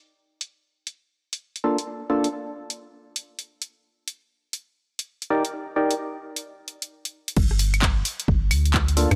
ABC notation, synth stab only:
X:1
M:4/4
L:1/8
Q:"Swing 16ths" 1/4=131
K:Gm
V:1 name="Synth stab"
z6 z [B,DFA] | z [B,DFA] z6 | z6 z [EGBd] | z [EGBd] z6 |
z6 z [B,DFA] |]